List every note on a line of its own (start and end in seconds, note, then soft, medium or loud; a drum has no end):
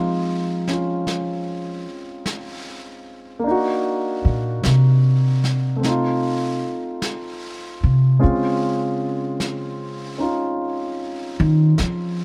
0.00 1.85 F3 medium
0.00 3.43 G#3 soft
0.00 3.45 C4 soft
0.00 3.46 D#4 soft
0.00 0.69 F4 soft
0.68 3.45 C#4 soft
0.68 3.46 F4 soft
0.68 snare soft
1.07 brush sweep soft
1.07 snare soft
2.26 brush sweep soft
2.26 snare soft
3.39 5.80 A#3 soft
3.44 5.82 D4 soft
3.44 5.83 D#4 soft
3.44 brush sweep soft
3.51 5.86 F#4 soft
4.25 4.63 A#2 medium
4.63 6.60 C3 medium
4.63 brush sweep soft
4.63 snare medium
5.44 snare soft
5.76 8.17 A3 soft
5.76 8.19 C4 soft
5.83 8.21 D#4 soft
5.83 brush sweep soft
5.83 snare soft
5.88 8.19 F4 soft
7.02 brush sweep soft
7.02 snare soft
7.83 8.20 C3 medium
8.19 12.25 G#3 soft
8.19 12.25 C4 soft
8.19 10.17 C#4 soft
8.19 10.20 F4 medium
8.19 brush sweep soft
8.24 10.18 C#3 medium
9.40 brush sweep soft
9.40 snare soft
10.18 12.25 C#4 soft
10.18 12.25 D#4 soft
10.18 12.25 F4 soft
10.59 brush sweep soft
11.40 11.77 D#3 medium
11.78 12.25 F3 medium
11.78 brush sweep soft
11.78 snare soft